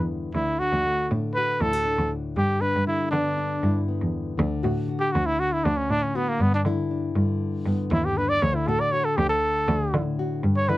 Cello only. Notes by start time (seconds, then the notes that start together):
Already playing: E2
0.35 D2
0.73 D2
1.11 A2
1.61 D2
1.99 D2
2.37 G2
2.76 G2
3.13 D3
3.63 G2
4.02 E2
4.39 D2
4.65 A2
5.16 D2
5.66 D2
5.90 A2
6.41 G2
6.65 D3
7.16 G2
7.66 G2
7.92 D#2
8.43 D2
8.68 A2
9.18 D2
9.68 D2
9.94 D3
10.43 G2
10.69 D3